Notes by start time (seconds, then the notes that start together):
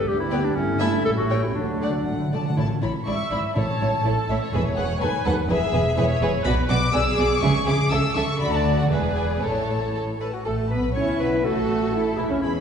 0.07 D2 G3 G4
0.20 E4
0.31 B3 D5 G5
0.45 D4
0.55 G1 G2 A3 C#4 E4
0.79 A3 D4 E4 E5 A5
1.04 A1 A2 G3 C#4 A4
1.17 F#4
1.30 A3 C#5 G5
1.44 E4
1.55 D2 D3 F#3 D4
1.64 D3
1.80 D3 A3 D5 F#5
1.89 D3
1.96 D3
2.04 A1 A2 D3
2.09 D3 F#5
2.20 D3
2.27 D3
2.33 D3 A3 D5 A5
2.43 D3 F#5
2.50 D3
2.57 A1 A2 E4 C#5 A5
2.82 A1 A2 E4 C#5 B5
3.06 G#1 G#2 E4 D5 E5 C#6
3.31 G#1 G#2 E4 D5 B5
3.55 A1 A2 E4 C#5 A5
3.81 A1 A2 E4 C#5
4.05 A1 A2 E4 A4 C#5
4.29 A1 A2 E4 C#5 E5
4.43 C#5
4.53 E1 E2 G#4 B4 C#5 E5
4.77 E1 E2 G#4 B4 F#5
5.00 D#2 A4 B4 G#5
5.24 D#2 A4 B4 F#5
5.49 E1 E2 G#4 B4 E5
5.73 E1 E2 G#4 B4
5.96 E1 E2 G#4 B4 C#5
6.21 E1 E2 G#4 B4
6.45 B1 B2 F#4 B4 D5 B5
6.70 B1 B2 F#4 D5 D6
6.93 B1 B2 G#4 D5 E6
7.18 B1 B2 G#4 D5 D6
7.42 C#2 C#3 G#4 E5 C#6
7.66 C#2 C#3 G#4 E5 D6
7.91 C#2 C#3 A4 E5 E6
8.15 C#2 C#3 A4 E5 C#6
8.40 D2 D3 F#4 D5 B5
8.54 A5
8.80 F#5
8.91 E1 E2 G#4 B4 D5 E5
9.17 G#5
9.43 A1 A2 A4 C#5 A5
9.95 A4
10.20 A4 B4 A5
10.34 F#4 F#5
10.45 A1 A3 A4 A5
10.70 B1 B3 B4 B5
10.95 C#2 C#4 E4 C#5 C#6
11.19 B1 B3 B4 B5
11.44 A1 A3 F#4 A4 A5
11.93 E4
12.17 E1 E3 E4 E5
12.29 C#2 C#3 C#4 C#5
12.42 E2 G#3 B3 C#4 E4 G#4 E5 B5